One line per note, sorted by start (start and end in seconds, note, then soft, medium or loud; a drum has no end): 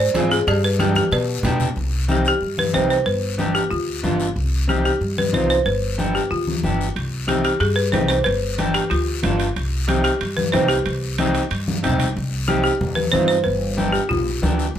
0.00 0.29 C5 loud
0.14 0.41 G#2 medium
0.14 0.37 C4 medium
0.14 0.38 F4 medium
0.14 0.38 G#4 medium
0.14 cowbell medium
0.14 high conga medium
0.14 short guiro medium
0.31 0.47 G#4 loud
0.31 short guiro medium
0.47 0.99 G2 loud
0.47 0.63 G4 loud
0.47 cowbell loud
0.47 long guiro medium
0.64 0.79 B4 medium
0.79 1.02 B3 medium
0.79 1.02 D4 medium
0.79 1.02 G4 medium
0.79 0.95 G4 medium
0.79 cowbell medium
0.79 high conga medium
0.79 short guiro medium
0.95 1.11 G4 loud
0.95 high conga medium
0.95 short guiro medium
1.12 1.38 B2 loud
1.12 1.58 B4 medium
1.12 cowbell medium
1.12 long guiro medium
1.43 1.70 B2 medium
1.43 1.67 B3 medium
1.43 1.67 D4 medium
1.43 1.67 G4 medium
1.43 cowbell medium
1.43 low conga loud
1.43 short guiro medium
1.60 low conga medium
1.60 short guiro medium
1.76 2.29 C2 medium
1.76 long guiro medium
2.08 2.32 C4 medium
2.08 2.32 D#4 medium
2.08 2.32 G4 medium
2.08 2.27 G4 medium
2.08 high conga medium
2.08 short guiro medium
2.25 2.60 G4 loud
2.25 short guiro medium
2.41 2.76 G2 medium
2.41 long guiro medium
2.58 2.74 B4 loud
2.58 high conga medium
2.73 3.00 C2 medium
2.73 2.96 C4 medium
2.73 2.96 D#4 medium
2.73 2.97 G4 medium
2.73 2.89 C5 medium
2.73 high conga medium
2.73 short guiro medium
2.90 3.05 C5 medium
2.90 short guiro medium
3.06 3.58 G1 medium
3.06 3.36 B4 medium
3.06 long guiro medium
3.38 3.61 B3 medium
3.38 3.62 D4 medium
3.38 3.62 G4 medium
3.38 high conga medium
3.38 short guiro medium
3.55 3.70 G4 medium
3.55 short guiro medium
3.71 4.05 D2 medium
3.71 4.16 F4 medium
3.71 long guiro medium
4.03 4.30 G1 medium
4.03 4.26 B3 medium
4.03 4.27 D4 medium
4.03 4.27 F4 medium
4.03 high conga medium
4.03 short guiro medium
4.20 short guiro medium
4.36 4.88 C2 medium
4.36 long guiro medium
4.68 4.91 C4 medium
4.68 4.91 D#4 medium
4.68 4.92 G4 medium
4.68 4.76 G4 medium
4.68 high conga medium
4.68 short guiro medium
4.85 5.15 G4 medium
4.85 short guiro medium
5.01 5.34 G2 medium
5.01 long guiro medium
5.18 5.35 B4 loud
5.18 high conga medium
5.33 5.59 C2 medium
5.33 5.56 C4 medium
5.33 5.56 D#4 medium
5.33 5.56 F4 medium
5.33 5.49 C5 medium
5.33 high conga medium
5.33 short guiro medium
5.50 5.65 C5 loud
5.50 short guiro medium
5.66 6.18 G1 medium
5.66 5.96 B4 medium
5.66 long guiro medium
5.98 6.21 B3 medium
5.98 6.21 D4 medium
5.98 6.21 G4 medium
5.98 high conga medium
5.98 short guiro medium
6.15 6.30 G4 medium
6.15 short guiro medium
6.31 6.65 D2 medium
6.31 6.76 F4 medium
6.31 long guiro medium
6.47 high conga medium
6.63 6.90 G1 medium
6.63 6.86 B3 medium
6.63 6.87 D4 medium
6.63 6.87 G4 medium
6.63 high conga medium
6.63 short guiro medium
6.81 short guiro medium
6.96 7.48 C2 medium
6.96 high timbale medium
6.96 long guiro medium
7.27 7.51 C4 medium
7.27 7.51 D#4 medium
7.27 7.43 G4 medium
7.27 7.51 G4 medium
7.27 high conga medium
7.27 high timbale medium
7.27 short guiro medium
7.45 7.62 G4 medium
7.45 high timbale medium
7.45 short guiro medium
7.60 7.95 G2 medium
7.60 7.76 G#4 loud
7.60 high timbale medium
7.60 long guiro medium
7.76 7.92 B4 loud
7.92 8.19 C2 medium
7.92 8.16 C4 medium
7.92 8.16 D#4 medium
7.92 8.16 G4 medium
7.92 8.07 C5 medium
7.92 high conga medium
7.92 high timbale medium
7.92 low timbale medium
7.92 short guiro medium
8.09 8.16 C5 loud
8.09 high timbale medium
8.09 short guiro medium
8.24 8.78 G1 medium
8.24 8.55 B4 loud
8.24 high timbale medium
8.24 long guiro medium
8.58 8.81 B3 medium
8.58 8.82 D4 medium
8.58 8.82 G4 medium
8.58 high conga medium
8.58 high timbale medium
8.58 short guiro medium
8.74 8.90 G4 medium
8.74 high timbale medium
8.74 short guiro medium
8.90 9.25 D2 medium
8.90 9.36 F4 medium
8.90 high timbale medium
8.90 long guiro medium
9.23 9.50 G1 medium
9.23 9.46 B3 medium
9.23 9.46 D4 medium
9.23 9.46 F4 medium
9.23 high conga medium
9.23 high timbale medium
9.23 low timbale medium
9.23 short guiro medium
9.40 high timbale medium
9.40 short guiro medium
9.56 10.08 C2 medium
9.56 high timbale medium
9.56 long guiro medium
9.88 10.11 C4 medium
9.88 10.11 D#4 medium
9.88 9.95 G4 medium
9.88 10.12 G4 medium
9.88 high conga medium
9.88 high timbale medium
9.88 short guiro medium
10.04 10.35 G4 medium
10.04 high timbale medium
10.04 short guiro medium
10.21 10.55 G2 medium
10.21 high timbale medium
10.21 long guiro medium
10.37 10.54 B4 medium
10.37 high conga medium
10.52 10.80 C2 medium
10.52 10.76 C4 medium
10.52 10.76 D#4 medium
10.52 10.77 G4 medium
10.52 10.70 C5 medium
10.52 high conga medium
10.52 high timbale medium
10.52 low timbale medium
10.52 short guiro medium
10.68 11.79 G4 medium
10.68 high timbale medium
10.68 short guiro medium
10.86 11.38 C2 medium
10.86 high timbale medium
10.86 long guiro medium
11.18 11.41 C4 medium
11.18 11.42 D#4 medium
11.18 11.42 G4 medium
11.18 high conga medium
11.18 high timbale medium
11.18 short guiro medium
11.35 high timbale medium
11.35 short guiro medium
11.51 11.85 G2 medium
11.51 high timbale medium
11.51 long guiro medium
11.68 high conga medium
11.83 12.09 C2 medium
11.83 12.06 C4 medium
11.83 12.06 D#4 medium
11.83 12.06 G4 medium
11.83 high timbale medium
11.83 short guiro medium
11.89 low conga medium
11.99 low conga medium
11.99 high timbale medium
11.99 short guiro medium
12.16 12.68 C2 medium
12.16 long guiro medium
12.48 12.71 C4 medium
12.48 12.71 D#4 medium
12.48 12.62 G4 medium
12.48 12.71 G4 medium
12.48 high conga medium
12.48 short guiro medium
12.64 12.94 G4 loud
12.64 short guiro medium
12.81 13.07 D#2 medium
12.81 low conga medium
12.81 long guiro medium
12.95 13.03 B4 loud
12.95 high conga medium
13.12 13.40 G2 medium
13.12 13.36 C4 medium
13.12 13.36 D#4 medium
13.12 13.36 F4 medium
13.12 13.19 C5 medium
13.12 high conga medium
13.12 short guiro medium
13.28 13.44 C5 loud
13.28 short guiro medium
13.44 13.98 G1 medium
13.44 13.75 B4 medium
13.44 long guiro medium
13.77 14.01 B3 medium
13.77 14.01 D4 medium
13.77 14.01 G4 medium
13.77 high conga medium
13.77 short guiro medium
13.92 14.09 G4 medium
13.92 short guiro medium
14.09 14.37 B1 medium
14.09 14.55 F4 medium
14.09 low conga medium
14.09 long guiro medium
14.42 14.69 D2 loud
14.42 14.65 B3 medium
14.42 14.66 D4 medium
14.42 14.66 G4 medium
14.42 high conga medium
14.42 short guiro medium
14.59 short guiro medium
14.75 14.79 C2 loud
14.75 long guiro medium